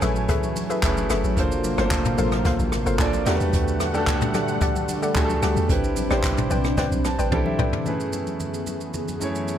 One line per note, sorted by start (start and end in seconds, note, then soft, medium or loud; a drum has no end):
0.00 0.28 A1 loud
0.00 1.35 E3 medium
0.00 3.22 F#3 medium
0.00 0.82 A3 medium
0.00 0.83 C#4 medium
0.00 0.84 E4 medium
0.00 0.85 G#4 medium
0.00 0.12 G#4 medium
0.00 0.12 A4 medium
0.00 0.86 B4 loud
0.00 0.12 B4 medium
0.00 0.50 C#5 loud
0.00 0.12 E5 medium
0.00 1.35 G#5 medium
0.00 cross-stick loud
0.00 open hi-hat soft
0.00 high conga medium
0.00 shaker medium
0.16 shaker soft
0.29 0.67 G#4 loud
0.29 0.67 A4 medium
0.29 0.67 B4 medium
0.29 0.67 E5 loud
0.29 kick loud
0.29 hi-hat pedal medium
0.29 low conga medium
0.29 shaker medium
0.43 high conga medium
0.43 shaker medium
0.56 open hi-hat medium
0.56 high conga medium
0.56 shaker medium
0.70 0.79 G#4 medium
0.70 0.79 A4 medium
0.70 0.79 B4 medium
0.70 0.79 E5 medium
0.70 shaker medium
0.82 1.09 F#1 loud
0.82 1.26 A3 medium
0.82 1.27 C#4 medium
0.82 1.27 E4 medium
0.82 1.28 G#4 medium
0.82 1.28 B4 loud
0.82 kick medium
0.82 clap loud
0.82 hi-hat pedal medium
0.82 shaker medium
0.97 high conga medium
0.97 shaker medium
1.10 1.24 F#1 loud
1.10 1.20 G#4 medium
1.10 1.20 A4 medium
1.10 1.20 B4 medium
1.10 1.20 E5 medium
1.10 cross-stick loud
1.10 open hi-hat medium
1.10 high conga medium
1.10 shaker loud
1.24 1.39 A1 medium
1.24 shaker soft
1.36 1.77 G1 loud
1.36 3.25 C3 medium
1.36 1.69 A#3 medium
1.36 3.25 A#3 medium
1.36 1.70 D4 medium
1.36 3.25 F4 loud
1.36 1.70 F4 medium
1.36 1.71 A4 medium
1.36 1.71 C5 loud
1.36 kick loud
1.36 hi-hat pedal medium
1.36 shaker medium
1.52 shaker medium
1.64 open hi-hat medium
1.64 high conga medium
1.64 shaker loud
1.77 2.17 G1 loud
1.77 1.84 A3 medium
1.77 2.64 D4 medium
1.77 2.65 F4 medium
1.77 1.87 A4 medium
1.77 2.65 A4 medium
1.77 1.87 A#4 medium
1.77 1.87 C5 medium
1.77 2.66 C5 loud
1.77 1.87 F5 medium
1.77 cross-stick loud
1.77 high conga medium
1.77 shaker soft
1.83 2.67 A#3 medium
1.91 kick medium
1.91 clap loud
1.91 hi-hat pedal medium
1.91 low conga medium
1.91 shaker medium
2.05 mid tom loud
2.05 shaker medium
2.18 2.44 A1 medium
2.18 2.28 A4 medium
2.18 2.28 A#4 medium
2.18 2.28 C5 medium
2.18 2.28 F5 medium
2.18 open hi-hat soft
2.18 high conga medium
2.18 shaker medium
2.32 cross-stick medium
2.32 shaker medium
2.45 2.59 B1 loud
2.45 2.55 A4 loud
2.45 2.55 A#4 medium
2.45 2.55 C5 medium
2.45 2.55 F5 loud
2.45 kick loud
2.45 snare medium
2.45 hi-hat pedal medium
2.45 low conga medium
2.45 shaker medium
2.59 2.85 A1 loud
2.59 high conga medium
2.59 shaker medium
2.72 cross-stick medium
2.72 open hi-hat medium
2.72 high conga medium
2.72 shaker medium
2.86 2.99 G1 loud
2.86 3.23 A4 medium
2.86 3.23 A#4 medium
2.86 3.23 C5 medium
2.86 3.23 F5 medium
2.86 shaker medium
2.98 3.25 A1 loud
2.98 3.26 A#3 loud
2.98 3.24 D4 medium
2.98 3.27 F4 medium
2.98 3.27 A4 medium
2.98 3.28 D5 loud
2.98 kick loud
2.98 clap loud
2.98 hi-hat pedal medium
2.98 shaker medium
3.13 high conga medium
3.13 shaker medium
3.25 3.40 E2 loud
3.25 5.67 D3 medium
3.25 7.82 G3 medium
3.25 3.80 A3 medium
3.25 5.67 A3 medium
3.25 3.80 D4 medium
3.25 3.81 F#4 medium
3.25 3.51 G4 medium
3.25 3.81 G4 medium
3.25 3.51 A4 medium
3.25 3.34 A#4 medium
3.25 3.51 D5 medium
3.25 5.67 F#5 loud
3.25 3.52 F#5 medium
3.25 snare medium
3.25 open hi-hat medium
3.25 high conga medium
3.25 shaker loud
3.35 3.85 B4 loud
3.40 3.53 E2 medium
3.40 shaker soft
3.53 4.36 E2 loud
3.53 kick loud
3.53 hi-hat pedal medium
3.53 shaker medium
3.68 shaker medium
3.80 cross-stick loud
3.80 open hi-hat medium
3.80 high conga medium
3.80 shaker medium
3.93 4.80 A3 medium
3.93 4.81 D4 medium
3.93 4.81 F#4 medium
3.93 4.03 G4 medium
3.93 4.82 G4 medium
3.93 4.03 A4 medium
3.93 4.82 A4 loud
3.93 4.03 D5 medium
3.93 4.04 F#5 medium
3.93 high conga medium
3.93 shaker soft
4.07 kick loud
4.07 clap loud
4.07 hi-hat pedal medium
4.07 low conga medium
4.07 shaker medium
4.21 mid tom loud
4.21 shaker medium
4.34 4.61 F#2 medium
4.34 4.44 G4 medium
4.34 4.44 A4 medium
4.34 4.44 D5 medium
4.34 4.44 F#5 medium
4.34 cross-stick loud
4.34 open hi-hat medium
4.34 high conga medium
4.34 shaker medium
4.48 shaker medium
4.61 4.99 G4 loud
4.61 4.99 A4 medium
4.61 4.99 D5 medium
4.61 4.99 F#5 loud
4.61 kick loud
4.61 hi-hat pedal medium
4.61 low conga medium
4.61 shaker medium
4.76 high conga medium
4.76 shaker medium
4.88 open hi-hat medium
4.88 high conga medium
4.88 shaker medium
5.02 5.11 G4 medium
5.02 5.12 A4 medium
5.02 5.12 D5 medium
5.02 5.12 F#5 medium
5.02 shaker medium
5.14 5.42 D2 loud
5.14 5.59 A3 medium
5.14 5.59 D4 medium
5.14 5.60 F#4 medium
5.14 5.60 G4 medium
5.14 5.24 G#4 medium
5.14 kick loud
5.14 clap loud
5.14 hi-hat pedal medium
5.14 shaker medium
5.24 5.64 A4 loud
5.29 high conga medium
5.29 shaker medium
5.42 5.56 D2 medium
5.42 5.52 G4 medium
5.42 5.52 A4 medium
5.42 5.52 D5 medium
5.42 5.52 F#5 medium
5.42 cross-stick loud
5.42 open hi-hat medium
5.42 high conga medium
5.42 shaker loud
5.57 5.69 E2 medium
5.57 shaker soft
5.68 6.09 A1 loud
5.68 7.84 C3 medium
5.68 6.02 C4 medium
5.68 7.84 C4 medium
5.68 6.02 D4 medium
5.68 7.84 D4 loud
5.68 6.03 E4 medium
5.68 6.03 G4 medium
5.68 6.03 B4 medium
5.68 kick loud
5.68 hi-hat pedal medium
5.68 shaker medium
5.84 shaker medium
5.97 open hi-hat medium
5.97 high conga medium
5.97 shaker medium
6.09 6.49 A1 loud
6.09 6.96 C4 medium
6.09 6.97 D4 medium
6.09 6.97 E4 medium
6.09 6.98 G4 medium
6.09 6.20 B4 medium
6.09 6.20 C5 medium
6.09 6.98 C5 loud
6.09 6.20 D5 medium
6.09 6.20 G5 medium
6.09 cross-stick medium
6.09 high conga medium
6.09 shaker soft
6.24 kick medium
6.24 clap medium
6.24 hi-hat pedal medium
6.24 low conga medium
6.24 shaker medium
6.38 mid tom loud
6.38 shaker medium
6.50 6.77 B1 medium
6.50 6.60 B4 medium
6.50 6.60 C5 medium
6.50 6.60 D5 medium
6.50 6.61 G5 medium
6.50 open hi-hat medium
6.50 high conga medium
6.50 shaker medium
6.64 cross-stick medium
6.64 shaker soft
6.77 6.91 C#2 loud
6.77 6.87 B4 loud
6.77 6.87 C5 medium
6.77 6.87 D5 medium
6.77 6.88 G5 loud
6.77 kick loud
6.77 snare medium
6.77 hi-hat pedal medium
6.77 low conga medium
6.77 shaker medium
6.92 7.18 B1 loud
6.92 high conga medium
6.92 shaker medium
7.05 7.30 A5 medium
7.05 cross-stick medium
7.05 open hi-hat medium
7.05 high conga medium
7.05 shaker medium
7.18 7.31 A1 medium
7.18 7.56 B4 medium
7.18 7.56 C5 medium
7.18 7.56 D5 medium
7.18 7.56 G5 medium
7.18 shaker medium
7.31 7.45 B1 loud
7.31 7.75 C4 medium
7.31 7.75 D4 medium
7.31 7.76 E4 medium
7.31 7.76 G4 medium
7.31 7.77 A4 loud
7.31 7.45 G5 medium
7.31 kick medium
7.31 high tom medium
7.46 7.83 E5 medium
7.46 high conga medium
7.58 7.72 C2 medium
7.58 7.84 B4 medium
7.58 7.84 C5 medium
7.58 7.84 D5 medium
7.58 7.84 G5 medium
7.58 mid tom loud
7.58 high conga medium
7.73 floor tom loud
7.84 8.72 F#2 medium
7.84 9.58 F#2 medium
7.84 9.58 E3 medium
7.84 8.72 A3 medium
7.84 9.58 B3 medium
7.84 8.73 C#4 medium
7.84 8.73 E4 medium
7.84 9.58 G#4 medium
7.84 8.73 G#4 medium
7.84 8.74 B4 medium
7.84 low conga medium
7.84 shaker medium
8.00 shaker medium
8.13 high conga medium
8.13 shaker medium
8.27 high conga soft
8.27 shaker soft
8.40 low conga medium
8.40 shaker medium
8.54 shaker medium
8.67 high conga medium
8.67 shaker medium
8.81 shaker soft
8.94 low conga medium
8.94 shaker medium
9.08 high conga medium
9.08 shaker medium
9.20 9.58 F#2 medium
9.20 9.58 A3 medium
9.20 9.58 C#4 medium
9.20 9.58 E4 medium
9.20 9.58 G#4 medium
9.20 9.58 C#5 medium
9.20 high conga medium
9.20 shaker medium
9.35 shaker medium
9.48 shaker medium